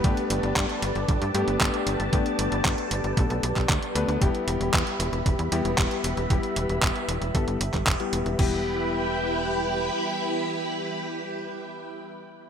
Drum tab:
CC |----------------|----------------|----------------|----------------|
HH |xxxxxxxxxxxxxxxx|xxxxxxxxxxxxxxxx|xxxxxxxxxxxxxxxx|xxxxxxxxxxxxxxxx|
CP |----x-------x---|----x------xx---|----x-------x---|----x------xx---|
BD |o---o---o---o---|o---o---o--oo---|o---o---o---o---|o---o---o--oo---|

CC |x---------------|----------------|
HH |----------------|----------------|
CP |----------------|----------------|
BD |o---------------|----------------|